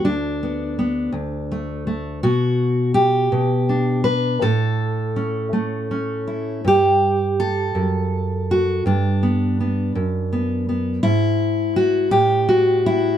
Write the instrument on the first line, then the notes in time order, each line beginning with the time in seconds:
steel-string acoustic guitar
0.05 D2 D4
0.43 B3
0.79 B3
1.12 D2
1.52 A3
1.87 A3
2.23 B2 F#4
2.94 G4
3.32 B2
3.69 D4
4.04 B4
4.41 A2 A4
5.16 C#4
5.53 A3
5.91 C#4
6.27 E4
6.65 G2 G4
7.40 A4
7.75 F#2
8.51 F#4
8.86 G2 D4
9.23 B3
9.60 B3
9.95 F#2
10.33 B3
10.69 B3
11.03 G#2 E4
11.76 F#4
12.11 A2 G4
12.49 F#4
12.86 E4